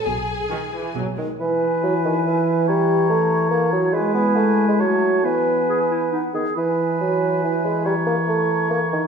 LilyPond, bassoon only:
\new Staff \with { instrumentName = "Bassoon" } { \clef bass \time 3/4 \key e \major \tempo 4 = 140 r2 r8 dis8 | e4 fis8 dis8 e4 | g4 a4 bes8 fis8 | gis8 b8 a8. gis16 fis4 |
e2 r8 dis8 | e4 fis4 e8 gis8 | g8 ais8 a4 ais8 dis8 | }